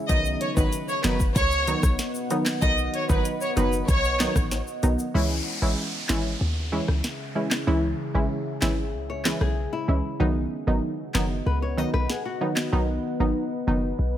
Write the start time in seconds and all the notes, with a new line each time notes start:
0.09 B1 D#3 F#3 B3 D#4 B4 D#5 F#5, kick, closed hi-hat, shaker
0.25 shaker
0.41 C#5, closed hi-hat
0.56 G#1 D#3 F#3 B3 D#4 B4, kick, shaker
0.73 closed hi-hat, shaker
0.88 C#5, shaker
1.04 F#1 D#3 F#3 B3 D#4 B4, snare, clap, closed hi-hat, shaker
1.20 kick, shaker
1.36 C#2 C#5, kick, closed hi-hat, shaker
1.51 shaker
1.67 D#3 F#3 B3 D#4, closed hi-hat, shaker
1.83 B1, kick, cross-stick, shaker
1.99 snare, closed hi-hat, shaker
2.15 shaker
2.30 D#3 F#3 B3 D#4, closed hi-hat, shaker
2.46 snare, clap, shaker
2.62 B1 D#3 F#3 B3 D#4 D#5, kick, closed hi-hat, shaker
2.78 shaker
2.94 C#5, closed hi-hat
3.09 G#1 D#3 F#3 B3 D#4 B4, kick, high timbale, shaker
3.25 closed hi-hat, shaker
3.41 C#5, shaker
3.56 F#1 D#3 F#3 B3 D#4 B4, closed hi-hat, shaker
3.73 shaker
3.88 B1 C#5, kick, closed hi-hat, shaker
4.04 shaker
4.19 D#3 F#3 B3 D#4, snare, clap, closed hi-hat, shaker
4.36 A1, kick, cross-stick, shaker
4.51 snare, closed hi-hat, high timbale, shaker
4.67 shaker
4.83 B1 D#3 F#3 B3 D#4, closed hi-hat, shaker
4.99 shaker
5.14 C#2 C#3 E3 G#3 C#4 E4 G#4 E5, downlifter
5.62 A1 E3 G#3 C#4 E4
6.09 G#1 E3 G#3 C#4 E4, snare, clap
6.41 D#2
6.72 E3 G#3 C#4 E4
6.88 C#2, cross-stick
7.04 snare
7.35 E3 G#3 C#4 E4
7.51 snare, clap
7.67 C#2 E3 G#3 C#4 E4
8.14 A1 E3 G#3 C#4 E4
8.61 G#1 E3 G#3 C#4 E4, snare, clap
8.94 C#2
9.10 C#5
9.25 E3 G#3 C#4 E4 B4, snare, clap
9.41 B1 G#4, cross-stick
9.73 E4
9.88 C#2 E3 G#3 C#4 E4
10.20 B1 D#3 F#3 B3 D#4 B4 D#5 F#5
10.67 G#1 D#3 F#3 B3 D#4
11.14 F#1 D#3 F#3 B3 D#4, snare, clap
11.46 C#2 B4
11.62 C#5
11.77 D#3 F#3 B3 D#4 D#5
11.94 B1 B4, cross-stick
12.10 G#4, snare
12.25 F#4
12.41 D#3 F#3 B3 D#4
12.56 snare, clap
12.72 B1 D#3 F#3 B3 D#4 G#5
13.20 G#1 D#3 F#3 B3 D#4
13.67 F#1 D#3 F#3 B3 D#4
13.99 B1